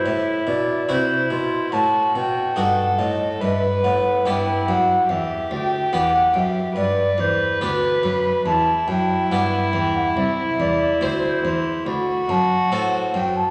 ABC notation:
X:1
M:4/4
L:1/16
Q:1/4=71
K:Em
V:1 name="Flute"
e2 d2 c2 c'2 a2 g2 f2 ^d2 | e2 f2 g2 f2 e2 g2 f2 e2 | [K:G] d2 c2 B2 b2 a2 g2 f2 g f | e2 d2 c2 c'2 b2 a2 f2 g a |]
V:2 name="Violin"
E4 E4 F4 A4 | B4 E4 G8 | [K:G] B8 E8- | E8 F8 |]
V:3 name="Harpsichord"
z4 [EF]4 z4 [^DF]4 | z4 [B,G]4 z4 [B,G]4 | [K:G] z4 [B,G]4 z4 [B,G]4 | z4 [Cc]4 z4 [CA]4 |]
V:4 name="Harpsichord" clef=bass
A,,2 B,,2 C,2 B,,2 A,,2 B,,2 G,,2 A,,2 | G,,2 A,,2 G,,2 F,,2 E,,2 D,,2 E,,2 F,,2 | [K:G] G,,2 E,,2 D,,2 F,,2 E,,2 F,,2 G,,2 E,,2 | C,,2 E,,2 D,,2 E,,2 D,,2 F,,2 A,,2 F,,2 |]
V:5 name="Cello" clef=bass
A,,2 B,,2 C,2 B,,2 A,,2 B,,2 G,,2 A,,2 | G,,2 A,,2 G,,2 F,,2 E,,2 D,,2 E,,2 F,,2 | [K:G] G,,2 E,,2 D,,2 F,,2 E,,2 F,,2 G,,2 E,,2 | C,,2 E,,2 D,,2 E,,2 D,,2 F,,2 A,,2 F,,2 |]